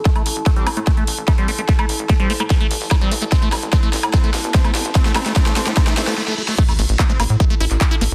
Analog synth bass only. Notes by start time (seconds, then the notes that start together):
0.26 A1
0.36 A1
0.67 A1
0.77 A2
1.07 A1
1.18 A1
1.48 A1
1.58 A1
1.89 A1
1.99 A1
2.30 A1
2.40 A2
2.71 A1
2.81 A1
3.11 A1
3.22 A1
3.52 A1
3.62 A1
3.93 A1
4.03 A2
4.34 A1
4.44 A1
4.75 A1
4.85 A1
5.16 A1
5.26 A1
5.56 A1
5.67 A2
5.97 A1
6.07 A1
6.79 A1
6.89 A1
7.20 A1
7.30 A2
7.60 A1
7.71 A1
8.01 A1
8.11 A1